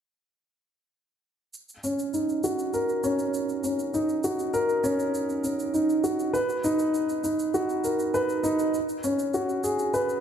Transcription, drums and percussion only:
0, 0, Header, 1, 2, 480
1, 0, Start_track
1, 0, Key_signature, -6, "minor"
1, 0, Tempo, 600000
1, 1234, Time_signature, 4, 2, 24, 8
1, 8163, End_track
2, 0, Start_track
2, 0, Title_t, "Drums"
2, 1230, Note_on_c, 9, 82, 31
2, 1310, Note_off_c, 9, 82, 0
2, 1351, Note_on_c, 9, 82, 17
2, 1431, Note_off_c, 9, 82, 0
2, 1472, Note_on_c, 9, 82, 54
2, 1552, Note_off_c, 9, 82, 0
2, 1592, Note_on_c, 9, 82, 26
2, 1672, Note_off_c, 9, 82, 0
2, 1711, Note_on_c, 9, 82, 33
2, 1791, Note_off_c, 9, 82, 0
2, 1832, Note_on_c, 9, 82, 15
2, 1912, Note_off_c, 9, 82, 0
2, 1951, Note_on_c, 9, 82, 61
2, 2031, Note_off_c, 9, 82, 0
2, 2070, Note_on_c, 9, 82, 24
2, 2150, Note_off_c, 9, 82, 0
2, 2191, Note_on_c, 9, 82, 34
2, 2271, Note_off_c, 9, 82, 0
2, 2311, Note_on_c, 9, 82, 15
2, 2391, Note_off_c, 9, 82, 0
2, 2431, Note_on_c, 9, 82, 57
2, 2511, Note_off_c, 9, 82, 0
2, 2551, Note_on_c, 9, 82, 24
2, 2631, Note_off_c, 9, 82, 0
2, 2672, Note_on_c, 9, 82, 33
2, 2752, Note_off_c, 9, 82, 0
2, 2792, Note_on_c, 9, 82, 17
2, 2872, Note_off_c, 9, 82, 0
2, 2912, Note_on_c, 9, 82, 55
2, 2992, Note_off_c, 9, 82, 0
2, 3032, Note_on_c, 9, 82, 25
2, 3112, Note_off_c, 9, 82, 0
2, 3154, Note_on_c, 9, 82, 31
2, 3234, Note_off_c, 9, 82, 0
2, 3273, Note_on_c, 9, 82, 17
2, 3353, Note_off_c, 9, 82, 0
2, 3391, Note_on_c, 9, 82, 62
2, 3471, Note_off_c, 9, 82, 0
2, 3514, Note_on_c, 9, 82, 26
2, 3594, Note_off_c, 9, 82, 0
2, 3632, Note_on_c, 9, 82, 36
2, 3712, Note_off_c, 9, 82, 0
2, 3754, Note_on_c, 9, 82, 16
2, 3834, Note_off_c, 9, 82, 0
2, 3874, Note_on_c, 9, 82, 62
2, 3954, Note_off_c, 9, 82, 0
2, 3995, Note_on_c, 9, 82, 27
2, 4075, Note_off_c, 9, 82, 0
2, 4116, Note_on_c, 9, 82, 34
2, 4196, Note_off_c, 9, 82, 0
2, 4234, Note_on_c, 9, 82, 16
2, 4314, Note_off_c, 9, 82, 0
2, 4354, Note_on_c, 9, 82, 59
2, 4434, Note_off_c, 9, 82, 0
2, 4476, Note_on_c, 9, 82, 24
2, 4556, Note_off_c, 9, 82, 0
2, 4595, Note_on_c, 9, 82, 34
2, 4675, Note_off_c, 9, 82, 0
2, 4716, Note_on_c, 9, 82, 17
2, 4796, Note_off_c, 9, 82, 0
2, 4835, Note_on_c, 9, 82, 60
2, 4915, Note_off_c, 9, 82, 0
2, 4955, Note_on_c, 9, 82, 26
2, 5035, Note_off_c, 9, 82, 0
2, 5076, Note_on_c, 9, 82, 33
2, 5156, Note_off_c, 9, 82, 0
2, 5194, Note_on_c, 9, 82, 19
2, 5274, Note_off_c, 9, 82, 0
2, 5314, Note_on_c, 9, 82, 66
2, 5394, Note_off_c, 9, 82, 0
2, 5432, Note_on_c, 9, 82, 28
2, 5512, Note_off_c, 9, 82, 0
2, 5555, Note_on_c, 9, 82, 33
2, 5635, Note_off_c, 9, 82, 0
2, 5674, Note_on_c, 9, 82, 19
2, 5754, Note_off_c, 9, 82, 0
2, 5793, Note_on_c, 9, 82, 61
2, 5873, Note_off_c, 9, 82, 0
2, 5914, Note_on_c, 9, 82, 29
2, 5994, Note_off_c, 9, 82, 0
2, 6034, Note_on_c, 9, 82, 39
2, 6114, Note_off_c, 9, 82, 0
2, 6155, Note_on_c, 9, 82, 16
2, 6235, Note_off_c, 9, 82, 0
2, 6275, Note_on_c, 9, 82, 65
2, 6355, Note_off_c, 9, 82, 0
2, 6394, Note_on_c, 9, 82, 28
2, 6474, Note_off_c, 9, 82, 0
2, 6515, Note_on_c, 9, 82, 35
2, 6595, Note_off_c, 9, 82, 0
2, 6633, Note_on_c, 9, 82, 19
2, 6713, Note_off_c, 9, 82, 0
2, 6754, Note_on_c, 9, 82, 62
2, 6834, Note_off_c, 9, 82, 0
2, 6873, Note_on_c, 9, 82, 29
2, 6953, Note_off_c, 9, 82, 0
2, 6993, Note_on_c, 9, 82, 33
2, 7073, Note_off_c, 9, 82, 0
2, 7112, Note_on_c, 9, 82, 19
2, 7192, Note_off_c, 9, 82, 0
2, 7230, Note_on_c, 9, 82, 66
2, 7310, Note_off_c, 9, 82, 0
2, 7352, Note_on_c, 9, 82, 28
2, 7432, Note_off_c, 9, 82, 0
2, 7472, Note_on_c, 9, 82, 35
2, 7552, Note_off_c, 9, 82, 0
2, 7593, Note_on_c, 9, 82, 17
2, 7673, Note_off_c, 9, 82, 0
2, 7712, Note_on_c, 9, 82, 67
2, 7792, Note_off_c, 9, 82, 0
2, 7832, Note_on_c, 9, 82, 28
2, 7912, Note_off_c, 9, 82, 0
2, 7953, Note_on_c, 9, 82, 38
2, 8033, Note_off_c, 9, 82, 0
2, 8073, Note_on_c, 9, 82, 18
2, 8153, Note_off_c, 9, 82, 0
2, 8163, End_track
0, 0, End_of_file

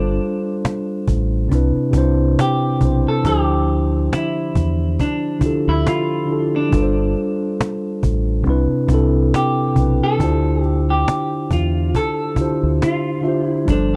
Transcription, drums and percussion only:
0, 0, Header, 1, 2, 480
1, 0, Start_track
1, 0, Tempo, 869565
1, 1791, Time_signature, 4, 2, 24, 8
1, 7706, End_track
2, 0, Start_track
2, 0, Title_t, "Cajon"
2, 111, Note_on_c, 9, 38, 22
2, 166, Note_off_c, 9, 38, 0
2, 358, Note_on_c, 9, 38, 121
2, 362, Note_off_c, 9, 38, 0
2, 362, Note_on_c, 9, 38, 89
2, 418, Note_off_c, 9, 38, 0
2, 594, Note_on_c, 9, 36, 85
2, 649, Note_off_c, 9, 36, 0
2, 837, Note_on_c, 9, 36, 72
2, 892, Note_off_c, 9, 36, 0
2, 1066, Note_on_c, 9, 36, 95
2, 1121, Note_off_c, 9, 36, 0
2, 1319, Note_on_c, 9, 38, 93
2, 1323, Note_off_c, 9, 38, 0
2, 1323, Note_on_c, 9, 38, 86
2, 1378, Note_off_c, 9, 38, 0
2, 1550, Note_on_c, 9, 36, 77
2, 1605, Note_off_c, 9, 36, 0
2, 1793, Note_on_c, 9, 36, 100
2, 1848, Note_off_c, 9, 36, 0
2, 2033, Note_on_c, 9, 38, 22
2, 2088, Note_off_c, 9, 38, 0
2, 2279, Note_on_c, 9, 38, 107
2, 2283, Note_off_c, 9, 38, 0
2, 2283, Note_on_c, 9, 38, 83
2, 2338, Note_off_c, 9, 38, 0
2, 2514, Note_on_c, 9, 36, 81
2, 2569, Note_off_c, 9, 36, 0
2, 2757, Note_on_c, 9, 36, 75
2, 2812, Note_off_c, 9, 36, 0
2, 2986, Note_on_c, 9, 36, 93
2, 3041, Note_off_c, 9, 36, 0
2, 3238, Note_on_c, 9, 38, 99
2, 3242, Note_off_c, 9, 38, 0
2, 3242, Note_on_c, 9, 38, 88
2, 3297, Note_off_c, 9, 38, 0
2, 3472, Note_on_c, 9, 38, 25
2, 3527, Note_off_c, 9, 38, 0
2, 3712, Note_on_c, 9, 36, 101
2, 3767, Note_off_c, 9, 36, 0
2, 3951, Note_on_c, 9, 38, 23
2, 4006, Note_off_c, 9, 38, 0
2, 4198, Note_on_c, 9, 38, 112
2, 4202, Note_off_c, 9, 38, 0
2, 4202, Note_on_c, 9, 38, 91
2, 4257, Note_off_c, 9, 38, 0
2, 4432, Note_on_c, 9, 36, 83
2, 4488, Note_off_c, 9, 36, 0
2, 4663, Note_on_c, 9, 38, 42
2, 4718, Note_off_c, 9, 38, 0
2, 4904, Note_on_c, 9, 36, 94
2, 4959, Note_off_c, 9, 36, 0
2, 5157, Note_on_c, 9, 38, 100
2, 5161, Note_off_c, 9, 38, 0
2, 5161, Note_on_c, 9, 38, 88
2, 5216, Note_off_c, 9, 38, 0
2, 5387, Note_on_c, 9, 36, 76
2, 5442, Note_off_c, 9, 36, 0
2, 5630, Note_on_c, 9, 36, 91
2, 5685, Note_off_c, 9, 36, 0
2, 5868, Note_on_c, 9, 38, 21
2, 5923, Note_off_c, 9, 38, 0
2, 6116, Note_on_c, 9, 38, 115
2, 6120, Note_off_c, 9, 38, 0
2, 6120, Note_on_c, 9, 38, 86
2, 6175, Note_off_c, 9, 38, 0
2, 6351, Note_on_c, 9, 36, 79
2, 6407, Note_off_c, 9, 36, 0
2, 6595, Note_on_c, 9, 36, 81
2, 6650, Note_off_c, 9, 36, 0
2, 6824, Note_on_c, 9, 36, 93
2, 6879, Note_off_c, 9, 36, 0
2, 7078, Note_on_c, 9, 38, 101
2, 7082, Note_off_c, 9, 38, 0
2, 7082, Note_on_c, 9, 38, 91
2, 7137, Note_off_c, 9, 38, 0
2, 7311, Note_on_c, 9, 38, 26
2, 7367, Note_off_c, 9, 38, 0
2, 7551, Note_on_c, 9, 36, 94
2, 7606, Note_off_c, 9, 36, 0
2, 7706, End_track
0, 0, End_of_file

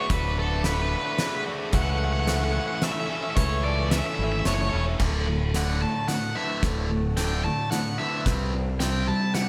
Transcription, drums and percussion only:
0, 0, Header, 1, 2, 480
1, 0, Start_track
1, 0, Tempo, 543971
1, 93, Time_signature, 3, 2, 24, 8
1, 8372, End_track
2, 0, Start_track
2, 0, Title_t, "Drums"
2, 88, Note_on_c, 9, 36, 91
2, 88, Note_on_c, 9, 42, 59
2, 176, Note_off_c, 9, 36, 0
2, 176, Note_off_c, 9, 42, 0
2, 566, Note_on_c, 9, 38, 74
2, 566, Note_on_c, 9, 42, 55
2, 654, Note_off_c, 9, 38, 0
2, 654, Note_off_c, 9, 42, 0
2, 1045, Note_on_c, 9, 38, 77
2, 1045, Note_on_c, 9, 42, 53
2, 1134, Note_off_c, 9, 38, 0
2, 1134, Note_off_c, 9, 42, 0
2, 1524, Note_on_c, 9, 42, 60
2, 1528, Note_on_c, 9, 36, 97
2, 1612, Note_off_c, 9, 42, 0
2, 1616, Note_off_c, 9, 36, 0
2, 2006, Note_on_c, 9, 38, 68
2, 2006, Note_on_c, 9, 42, 58
2, 2095, Note_off_c, 9, 38, 0
2, 2095, Note_off_c, 9, 42, 0
2, 2487, Note_on_c, 9, 38, 72
2, 2487, Note_on_c, 9, 42, 51
2, 2575, Note_off_c, 9, 38, 0
2, 2575, Note_off_c, 9, 42, 0
2, 2971, Note_on_c, 9, 36, 99
2, 2971, Note_on_c, 9, 42, 64
2, 3059, Note_off_c, 9, 36, 0
2, 3059, Note_off_c, 9, 42, 0
2, 3453, Note_on_c, 9, 38, 83
2, 3453, Note_on_c, 9, 42, 63
2, 3542, Note_off_c, 9, 38, 0
2, 3542, Note_off_c, 9, 42, 0
2, 3930, Note_on_c, 9, 38, 72
2, 3930, Note_on_c, 9, 42, 57
2, 4018, Note_off_c, 9, 38, 0
2, 4018, Note_off_c, 9, 42, 0
2, 4407, Note_on_c, 9, 38, 38
2, 4407, Note_on_c, 9, 49, 95
2, 4410, Note_on_c, 9, 36, 86
2, 4495, Note_off_c, 9, 38, 0
2, 4495, Note_off_c, 9, 49, 0
2, 4498, Note_off_c, 9, 36, 0
2, 4892, Note_on_c, 9, 38, 44
2, 4892, Note_on_c, 9, 42, 59
2, 4980, Note_off_c, 9, 38, 0
2, 4980, Note_off_c, 9, 42, 0
2, 5369, Note_on_c, 9, 38, 40
2, 5369, Note_on_c, 9, 42, 53
2, 5457, Note_off_c, 9, 38, 0
2, 5457, Note_off_c, 9, 42, 0
2, 5848, Note_on_c, 9, 38, 47
2, 5848, Note_on_c, 9, 42, 54
2, 5849, Note_on_c, 9, 36, 92
2, 5937, Note_off_c, 9, 36, 0
2, 5937, Note_off_c, 9, 38, 0
2, 5937, Note_off_c, 9, 42, 0
2, 6327, Note_on_c, 9, 38, 48
2, 6327, Note_on_c, 9, 42, 68
2, 6415, Note_off_c, 9, 38, 0
2, 6415, Note_off_c, 9, 42, 0
2, 6811, Note_on_c, 9, 38, 54
2, 6811, Note_on_c, 9, 42, 57
2, 6899, Note_off_c, 9, 38, 0
2, 6899, Note_off_c, 9, 42, 0
2, 7288, Note_on_c, 9, 36, 96
2, 7290, Note_on_c, 9, 38, 63
2, 7290, Note_on_c, 9, 42, 62
2, 7377, Note_off_c, 9, 36, 0
2, 7379, Note_off_c, 9, 38, 0
2, 7379, Note_off_c, 9, 42, 0
2, 7767, Note_on_c, 9, 38, 60
2, 7767, Note_on_c, 9, 42, 71
2, 7855, Note_off_c, 9, 38, 0
2, 7855, Note_off_c, 9, 42, 0
2, 8246, Note_on_c, 9, 38, 57
2, 8246, Note_on_c, 9, 42, 57
2, 8334, Note_off_c, 9, 38, 0
2, 8334, Note_off_c, 9, 42, 0
2, 8372, End_track
0, 0, End_of_file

